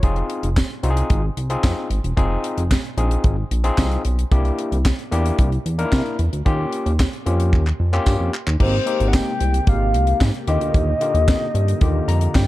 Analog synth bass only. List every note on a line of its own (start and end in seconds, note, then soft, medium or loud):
0.03 0.23 F1 loud
0.43 0.63 F1 loud
0.83 1.03 C2 medium
1.10 1.30 G#1 loud
1.37 1.57 C2 medium
1.64 1.74 F2 loud
1.90 2.00 G#1 medium
2.04 2.14 E1 medium
2.17 2.37 F1 loud
2.58 2.77 F1 loud
2.98 3.17 A#1 loud
3.24 3.44 G#1 loud
3.51 3.71 A#1 medium
3.78 3.98 C2 loud
4.05 4.25 B1 medium
4.32 4.51 C2 loud
4.72 4.91 C2 loud
5.12 5.32 E2 medium
5.39 5.58 C2 loud
5.66 5.85 E2 medium
5.93 6.02 C3 loud
6.19 6.29 E2 medium
6.33 6.42 D2 medium
6.46 6.66 D#2 loud
6.86 7.06 D#2 loud
7.26 7.54 F2 loud
7.53 7.73 D#2 medium
7.80 7.99 F2 medium
8.06 8.16 G2 loud
8.20 8.30 F2 medium
8.47 8.57 D#2 loud
8.60 8.80 G#1 loud
9.00 9.20 G#1 medium
9.40 9.60 C2 loud
9.67 9.96 G#1 medium
9.94 10.14 C2 medium
10.21 10.31 G#2 loud
10.48 10.57 D#2 loud
10.61 10.71 D2 medium
10.74 10.94 D#2 loud
11.14 11.34 D#2 loud
11.55 11.74 G2 loud
11.81 12.01 D#2 loud
12.08 12.28 F2 medium
12.35 12.47 G2 loud